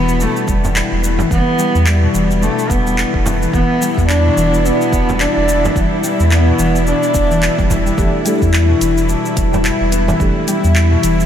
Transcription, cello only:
0.00 0.24 B3 loud
0.22 0.49 A3 medium
0.50 1.01 G3 medium
1.32 1.89 B3 loud
1.88 2.43 G3 medium
2.42 2.72 A3 medium
2.70 3.26 B3 medium
3.53 4.05 B3 loud
4.08 4.67 D4 loud
4.65 5.22 B3 loud
5.21 5.76 D4 loud
5.78 6.34 G3 loud
6.33 6.88 B3 loud
6.88 7.67 D4 loud

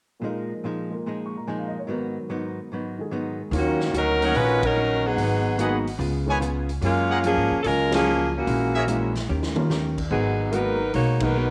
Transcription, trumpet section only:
4.22 4.74 A#4 medium
4.22 4.74 C#5 medium
4.22 4.74 D#5 medium
4.22 4.74 F#5 medium
5.60 5.78 G#4 medium
5.60 5.79 B4 medium
5.60 5.78 D#5 medium
5.60 5.78 F#5 medium
6.28 6.37 G#4 medium
6.28 6.37 B4 medium
6.28 6.37 C#5 medium
6.28 6.37 G#5 medium
7.09 7.19 G#4 medium
7.09 7.19 A#4 medium
7.09 7.19 F5 medium
7.09 7.19 F#5 medium
8.75 8.84 G#4 medium
8.75 8.84 A#4 medium
8.75 8.84 C#5 medium
8.75 8.84 E5 medium

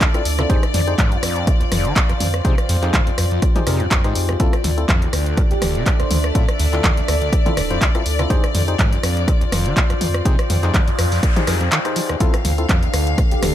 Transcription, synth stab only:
0.14 0.22 C4 medium
0.14 0.22 E4 medium
0.14 0.22 F4 medium
0.14 0.22 A4 loud
0.39 0.48 C4 medium
0.39 0.48 E4 medium
0.39 0.48 F4 medium
0.39 0.48 A4 medium
0.50 0.65 D#4 loud
0.50 0.65 G4 medium
0.50 0.65 G#4 medium
0.50 0.65 C5 loud
0.87 0.95 D#4 loud
0.87 0.95 G4 medium
0.87 0.95 G#4 medium
0.87 0.95 C5 loud
2.45 2.54 D#4 medium
2.45 2.54 G4 medium
2.45 2.54 G#4 medium
2.45 2.54 C5 medium
2.82 2.95 D#4 medium
2.82 2.95 G4 medium
2.82 2.95 G#4 medium
2.82 2.95 C5 loud
3.56 3.64 D#4 loud
3.56 3.64 G4 medium
3.56 3.64 G#4 medium
3.56 3.64 C5 loud
3.67 3.82 D#4 medium
3.67 3.82 G4 medium
3.67 3.82 G#4 medium
3.67 3.82 A#4 medium
4.04 4.37 D#4 medium
4.04 4.37 G4 medium
4.04 4.37 G#4 medium
4.04 4.37 C5 loud
4.40 4.55 C4 loud
4.40 4.55 E4 medium
4.40 4.55 F4 medium
4.40 4.55 A4 loud
4.78 4.85 C4 loud
4.78 4.85 E4 medium
4.78 4.85 F4 medium
4.78 4.85 A4 loud
6.35 6.45 C4 medium
6.35 6.45 E4 medium
6.35 6.45 F4 medium
6.35 6.45 A4 medium
6.73 6.86 C4 medium
6.73 6.86 E4 medium
6.73 6.86 F4 medium
6.73 6.86 A4 loud
7.46 7.54 C4 loud
7.46 7.54 E4 medium
7.46 7.54 F4 medium
7.46 7.54 A4 loud
7.70 7.78 C4 medium
7.70 7.78 E4 medium
7.70 7.78 F4 medium
7.70 7.78 C5 loud
7.95 8.03 C4 medium
7.95 8.03 E4 medium
7.95 8.03 F4 medium
7.95 8.03 A4 loud
8.19 8.29 C4 medium
8.19 8.29 E4 medium
8.19 8.29 F4 medium
8.19 8.29 A4 medium
8.30 8.45 D#4 loud
8.30 8.45 G4 medium
8.30 8.45 G#4 medium
8.30 8.45 C5 loud
8.68 8.76 D#4 loud
8.68 8.76 G4 medium
8.68 8.76 G#4 medium
8.68 8.76 C5 loud
10.25 10.35 D#4 medium
10.25 10.35 G4 medium
10.25 10.35 G#4 medium
10.25 10.35 C5 medium
10.63 10.76 D#4 medium
10.63 10.76 G4 medium
10.63 10.76 G#4 medium
10.63 10.76 C5 loud
11.36 11.44 D#4 loud
11.36 11.44 G4 medium
11.36 11.44 G#4 medium
11.36 11.44 C5 loud
11.47 11.62 D#4 medium
11.47 11.62 G4 medium
11.47 11.62 G#4 medium
11.47 11.62 A#4 medium
11.85 12.18 D#4 medium
11.85 12.18 G4 medium
11.85 12.18 G#4 medium
11.85 12.18 C5 loud
12.20 12.35 C4 loud
12.20 12.35 E4 medium
12.20 12.35 F4 medium
12.20 12.35 A4 loud
12.58 12.66 C4 loud
12.58 12.66 E4 medium
12.58 12.66 F4 medium
12.58 12.66 A4 loud

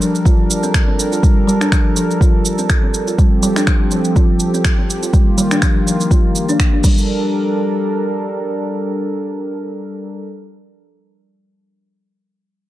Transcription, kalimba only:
0.01 0.13 F3 medium
0.25 0.38 F4 medium
0.63 0.73 C4 medium
0.88 0.98 C4 medium
1.12 1.22 F4 medium
1.23 1.35 G3 medium
1.47 1.60 G3 medium
1.61 1.71 D4 medium
1.72 1.84 F3 medium
1.96 2.09 F3 medium
2.21 2.33 F4 loud
2.59 2.68 C4 medium
2.83 2.93 C4 medium
3.07 3.17 F4 medium
3.18 3.30 G3 medium
3.43 3.56 G3 medium
3.56 3.67 D4 medium
3.67 3.79 F3 medium
3.92 4.04 F3 medium
4.16 4.28 F4 medium
4.54 4.64 C4 medium
4.78 4.88 C4 medium
5.03 5.12 F4 medium
5.13 5.26 G3 medium
5.38 5.51 G3 medium
5.52 5.62 D4 medium
5.62 5.74 F3 medium
5.87 5.99 F3 medium
6.11 6.23 F4 medium
6.49 6.59 D4 medium
6.73 6.84 D4 medium
6.84 7.30 G3 medium

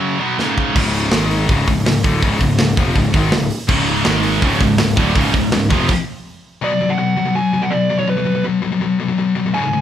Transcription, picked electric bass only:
0.75 1.10 C#1 loud
1.12 1.47 G#1 loud
1.49 1.66 C#1 loud
1.67 1.85 C#1 medium
1.86 2.03 C#1 medium
2.04 2.21 D1 medium
2.22 2.40 C#1 loud
2.41 2.58 C#1 medium
2.60 2.77 C#1 medium
2.77 2.95 F1 medium
2.95 3.13 C#1 medium
3.14 3.31 G#1 medium
3.33 3.50 C#1 medium
3.69 4.03 C#1 loud
4.06 4.40 G#1 loud
4.42 4.59 C#1 loud
4.60 4.78 C#1 medium
4.80 4.96 C#1 medium
4.97 5.14 D1 loud
5.15 5.32 C#1 loud
5.34 5.51 C#1 medium
5.53 5.70 C#1 medium
5.70 5.88 F1 medium

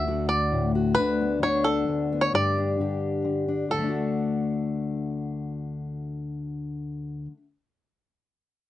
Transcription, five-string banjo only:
0.00 0.26 E5 medium
0.29 0.71 D5 medium
0.95 1.38 B4 medium
1.43 1.66 C#5 medium
1.64 2.23 A4 medium
2.21 2.33 C#5 medium
2.35 3.22 D5 medium
3.71 7.25 A4 medium

